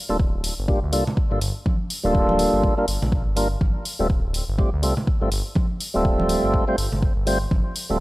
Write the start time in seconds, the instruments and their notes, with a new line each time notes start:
0.09 analog synth bass D1, tonewheel organ G3 A#3 D4 F4 A4
0.20 kick
0.44 open hi-hat
0.58 analog synth bass G1
0.68 tonewheel organ G3 A#3 D4 F4 G4, kick
0.83 analog synth bass D2
0.92 analog synth bass C2, tonewheel organ G3 A#3 D4 F4 A4, open hi-hat
1.07 low conga
1.17 kick
1.31 analog synth bass G1, tonewheel organ G3 A#3 D4 F4 A4
1.41 analog synth bass G1, open hi-hat
1.66 kick, high conga
1.90 open hi-hat
2.04 analog synth bass D1, tonewheel organ G3 A#3 D4 F4 A4
2.15 kick
2.29 high conga
2.39 open hi-hat
2.54 analog synth bass G1
2.63 kick
2.77 tonewheel organ G3 A#3 D4 F4 A#4
2.88 analog synth bass G1, open hi-hat
3.02 analog synth bass A#1, low conga
3.12 kick
3.27 analog synth bass G1
3.36 tonewheel organ G3 A#3 D4 F4 A#4, open hi-hat
3.61 analog synth bass G1, kick, high conga
3.85 open hi-hat
3.99 analog synth bass D1, tonewheel organ G3 A3 C4 F4 A4
4.10 kick
4.34 open hi-hat
4.49 analog synth bass G1
4.58 tonewheel organ G3 A3 C4 F4 G4, kick
4.73 analog synth bass D2
4.82 analog synth bass C2, tonewheel organ G3 A3 C4 F4 A4, open hi-hat
4.97 low conga
5.07 kick
5.21 analog synth bass G1, tonewheel organ G3 A3 C4 F4 A4
5.32 analog synth bass G1, open hi-hat
5.55 kick, high conga
5.80 open hi-hat
5.94 analog synth bass D1, tonewheel organ G3 A3 C4 F4 A4
6.05 kick
6.20 high conga
6.29 open hi-hat
6.44 analog synth bass G1
6.54 kick
6.67 tonewheel organ G3 A3 C4 F4 C5
6.78 analog synth bass G1, open hi-hat
6.92 analog synth bass G1, low conga
7.02 kick
7.17 analog synth bass G1
7.26 tonewheel organ G3 A3 C4 F4 C5, open hi-hat
7.51 analog synth bass G1, kick, high conga
7.76 open hi-hat
7.89 analog synth bass D1, tonewheel organ G3 A3 C4 F4 A4